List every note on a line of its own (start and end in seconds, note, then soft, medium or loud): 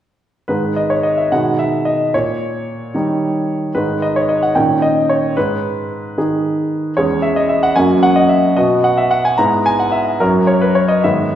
0.48 1.29 G#2 soft
0.48 1.27 D#3 soft
0.48 1.28 G#3 soft
0.48 1.28 D#4 soft
0.48 0.76 B4 medium
0.76 0.90 D#5 medium
0.90 1.04 C#5 medium
1.03 1.17 D#5 medium
1.17 1.31 E5 soft
1.32 2.11 B2 soft
1.32 2.09 D#3 soft
1.32 2.10 G#3 soft
1.32 2.10 D#4 soft
1.32 1.59 F#5 medium
1.59 1.86 E5 medium
1.85 2.13 D#5 medium
2.14 2.93 A#2 soft
2.14 3.76 C#5 medium
2.95 3.72 D#3 soft
2.95 3.72 G3 soft
2.95 3.72 D#4 soft
3.75 4.53 G#2 soft
3.75 4.52 D#3 soft
3.75 4.52 G#3 soft
3.75 4.52 D#4 soft
3.75 4.02 B4 medium
4.02 4.16 D#5 medium
4.16 4.29 C#5 medium
4.29 4.42 D#5 medium
4.43 4.56 F#5 medium
4.55 5.34 A#2 soft
4.55 5.32 D#3 soft
4.55 5.33 C#4 soft
4.55 5.33 D#4 soft
4.55 4.82 G5 medium
4.82 5.09 D#5 medium
5.09 5.36 C#5 medium
5.37 6.15 G#2 soft
5.37 6.97 B4 medium
6.18 6.93 D#3 soft
6.18 6.93 D#4 soft
6.18 6.93 G#4 soft
6.97 7.75 E2 soft
6.97 7.73 G#3 soft
6.97 7.73 C#4 soft
6.97 7.74 G#4 soft
6.97 7.23 C#5 medium
7.22 7.36 E5 medium
7.36 7.50 D#5 medium
7.49 7.63 E5 medium
7.63 7.76 F#5 medium
7.76 8.55 F#2 soft
7.76 8.53 A#3 soft
7.76 8.53 C#4 soft
7.76 8.54 F#4 soft
7.76 8.03 G#5 medium
8.03 8.16 F#5 medium
8.16 8.30 D#5 medium
8.29 8.57 E5 medium
8.57 9.36 B2 soft
8.57 9.35 B3 soft
8.57 9.35 F#4 soft
8.57 8.84 D#5 medium
8.84 8.98 F#5 medium
8.97 9.11 E5 medium
9.11 9.25 F#5 medium
9.25 9.39 G#5 medium
9.38 10.18 G#2 soft
9.38 10.16 B3 soft
9.38 10.17 E4 soft
9.38 9.65 A#5 medium
9.66 9.79 G#5 medium
9.79 9.93 F#5 medium
9.92 10.20 E5 medium
10.20 11.01 F#2 medium
10.20 10.99 F#3 soft
10.20 11.00 C#4 soft
10.20 11.00 F#4 soft
10.20 10.48 A#4 medium
10.47 10.61 C#5 medium
10.62 10.75 B4 medium
10.75 10.89 C#5 medium
10.88 11.03 D#5 medium
11.04 11.35 G#2 soft
11.04 11.35 D#3 soft
11.04 11.35 B3 soft
11.04 11.35 B4 soft
11.04 11.35 E5 medium